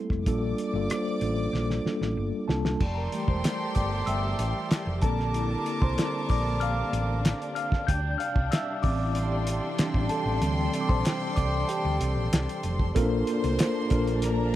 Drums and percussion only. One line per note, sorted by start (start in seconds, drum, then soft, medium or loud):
0.10 kick medium
0.10 cross-stick soft
0.26 kick medium
0.26 closed hi-hat medium
0.58 closed hi-hat medium
0.90 cross-stick medium
0.90 closed hi-hat medium
1.21 closed hi-hat medium
1.54 snare soft
1.70 snare soft
1.86 snare medium
2.02 snare medium
2.49 snare medium
2.65 snare medium
2.80 kick medium
2.80 crash medium
3.12 closed hi-hat medium
3.28 kick medium
3.44 snare loud
3.44 clap medium
3.44 closed hi-hat medium
3.75 kick medium
3.75 closed hi-hat medium
4.07 closed hi-hat medium
4.39 closed hi-hat medium
4.71 snare loud
4.71 clap medium
4.71 closed hi-hat medium
5.02 kick loud
5.02 closed hi-hat medium
5.20 snare soft
5.34 closed hi-hat medium
5.66 closed hi-hat medium
5.82 kick medium
5.98 snare loud
5.98 clap medium
5.98 closed hi-hat medium
6.29 kick medium
6.29 open hi-hat soft
6.61 closed hi-hat medium
6.93 closed hi-hat medium
7.25 snare loud
7.25 clap medium
7.25 closed hi-hat medium
7.42 closed hi-hat soft
7.56 closed hi-hat medium
7.72 kick medium
7.72 snare soft
7.88 kick medium
7.88 closed hi-hat medium
8.20 closed hi-hat medium
8.36 kick medium
8.52 snare loud
8.52 clap medium
8.52 closed hi-hat medium
8.83 kick medium
8.83 open hi-hat soft
9.15 closed hi-hat medium
9.47 closed hi-hat medium
9.79 snare loud
9.79 clap medium
9.79 closed hi-hat medium
9.94 kick medium
10.09 closed hi-hat medium
10.42 closed hi-hat medium
10.73 closed hi-hat medium
10.89 kick medium
11.05 snare loud
11.05 clap medium
11.05 closed hi-hat loud
11.37 kick medium
11.37 closed hi-hat medium
11.69 closed hi-hat medium
12.01 closed hi-hat medium
12.33 snare loud
12.33 clap medium
12.33 closed hi-hat medium
12.49 closed hi-hat medium
12.63 closed hi-hat medium
12.79 kick medium
12.96 kick loud
12.96 closed hi-hat medium
13.27 closed hi-hat medium
13.44 closed hi-hat medium
13.59 snare loud
13.59 clap medium
13.59 closed hi-hat medium
13.90 kick medium
13.90 closed hi-hat medium
14.07 closed hi-hat medium
14.22 snare soft
14.22 closed hi-hat medium